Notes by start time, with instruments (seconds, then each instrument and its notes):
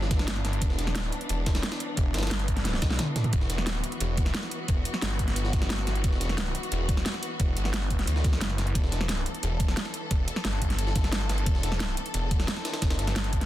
Already playing: detuned saw bass G1, string section E3 B3 D4
0.02 snare
0.11 kick, snare, closed hi-hat
0.19 snare
0.28 snare, closed hi-hat
0.36 snare
0.45 detuned saw bass G1, snare, closed hi-hat
0.53 closed hi-hat
0.62 detuned saw bass E1, kick, closed hi-hat
0.70 snare
0.79 snare, closed hi-hat
0.87 snare
0.95 snare, closed hi-hat
1.12 closed hi-hat
1.21 closed hi-hat
1.29 detuned saw bass E1, closed hi-hat
1.46 kick, snare, closed hi-hat
1.55 snare, closed hi-hat
1.63 snare, closed hi-hat
1.72 snare, closed hi-hat
1.80 closed hi-hat
1.97 detuned saw bass E1, kick, closed hi-hat
2.14 detuned saw bass G1, snare, closed hi-hat
2.19 snare, closed hi-hat
2.23 snare, closed hi-hat
2.27 snare, closed hi-hat
2.31 detuned saw bass G1, snare, closed hi-hat
2.40 closed hi-hat
2.48 kick, closed hi-hat
2.57 snare, closed hi-hat
2.65 snare, closed hi-hat
2.74 snare
2.82 detuned saw bass B1, kick, snare, closed hi-hat
2.90 snare
2.99 snare, closed hi-hat, mid tom
3.16 snare, closed hi-hat, mid tom
3.24 closed hi-hat, mid tom
3.33 detuned saw bass E1, string section F#4, kick, closed hi-hat
3.41 snare
3.50 snare, closed hi-hat
3.58 snare
3.67 snare, closed hi-hat
3.84 closed hi-hat
3.92 closed hi-hat
4.01 detuned saw bass E1, closed hi-hat
4.17 kick, closed hi-hat
4.26 snare
4.34 snare, closed hi-hat
4.43 snare
4.51 closed hi-hat
4.68 detuned saw bass E1, kick, closed hi-hat
4.85 closed hi-hat
4.94 snare
5.02 detuned saw bass G1, snare, closed hi-hat
5.19 kick, closed hi-hat
5.28 snare, closed hi-hat
5.36 closed hi-hat
5.45 snare
5.53 kick, snare, closed hi-hat
5.62 snare
5.70 snare, closed hi-hat
5.79 snare
5.87 detuned saw bass G1, snare, closed hi-hat
5.96 closed hi-hat
6.04 detuned saw bass E1, kick, closed hi-hat
6.13 snare
6.21 snare, closed hi-hat
6.29 snare
6.38 snare, closed hi-hat
6.55 closed hi-hat
6.63 closed hi-hat
6.72 detuned saw bass E1, closed hi-hat
6.89 kick, closed hi-hat
6.97 snare
7.06 snare, closed hi-hat
7.14 snare
7.23 closed hi-hat
7.40 detuned saw bass E1, kick, closed hi-hat
7.57 detuned saw bass G1, closed hi-hat
7.65 snare
7.74 snare, closed hi-hat
7.90 kick, closed hi-hat
7.99 snare, closed hi-hat
8.07 detuned saw bass D2, closed hi-hat
8.16 snare
8.24 kick, snare, closed hi-hat
8.33 snare
8.41 detuned saw bass F#1, snare, closed hi-hat
8.50 snare
8.58 snare, closed hi-hat
8.67 closed hi-hat
8.75 detuned saw bass E1, string section A4, kick, closed hi-hat
8.84 snare
8.92 snare, closed hi-hat
9.01 snare
9.09 snare, closed hi-hat
9.26 closed hi-hat
9.35 closed hi-hat
9.43 detuned saw bass E1, closed hi-hat
9.60 kick, closed hi-hat
9.68 snare
9.77 snare, closed hi-hat
9.85 snare
9.94 closed hi-hat
10.11 detuned saw bass E1, kick, closed hi-hat
10.28 closed hi-hat
10.36 snare
10.45 detuned saw bass G1, snare, closed hi-hat
10.62 kick, closed hi-hat
10.70 snare, closed hi-hat
10.79 closed hi-hat
10.87 snare
10.96 kick, snare, closed hi-hat
11.04 snare
11.12 snare, closed hi-hat
11.21 snare
11.29 detuned saw bass G1, snare, closed hi-hat
11.38 closed hi-hat
11.46 detuned saw bass E1, kick, closed hi-hat
11.55 snare
11.63 snare, closed hi-hat
11.72 snare
11.80 snare, closed hi-hat
11.97 closed hi-hat
12.06 closed hi-hat
12.14 detuned saw bass E1, closed hi-hat
12.31 kick, closed hi-hat
12.40 snare
12.48 snare, closed hi-hat
12.57 snare
12.65 snare, closed hi-hat
12.74 snare, closed hi-hat
12.82 detuned saw bass E1, kick, snare, closed hi-hat
12.90 snare, closed hi-hat
12.99 detuned saw bass G1, snare, closed hi-hat
13.07 snare, closed hi-hat
13.16 detuned saw bass G1, snare, closed hi-hat
13.24 closed hi-hat
13.33 kick, closed hi-hat
13.41 snare, closed hi-hat